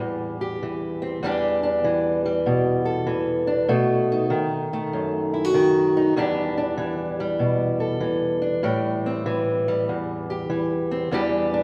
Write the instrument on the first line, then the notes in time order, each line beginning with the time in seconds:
steel-string acoustic guitar
Already playing: E3 G3 C4
0.00 E2
0.41 G4
0.63 E3
1.02 C4
1.23 E2 E3 G3 D4 G4
1.63 D4
1.84 E3
2.26 G3
2.46 B2
2.85 A4
3.07 E3
3.47 D4
3.69 B2 A3
4.12 D#4
4.30 D#3
4.73 A3
4.93 F#2
5.34 E4
5.45 F#4
5.54 D#3
5.97 D#4
6.16 E2 E3 G3 D4 G4
6.58 D4
6.78 E3
7.20 G3
7.39 B2
7.80 A4
8.01 E3
8.42 D4
8.63 A2 G3
9.06 C4
9.26 E3
9.68 G3
9.89 E2
10.30 G4
10.50 E3
10.91 C4
11.11 E2 E3 G3 D4 G4
11.54 D4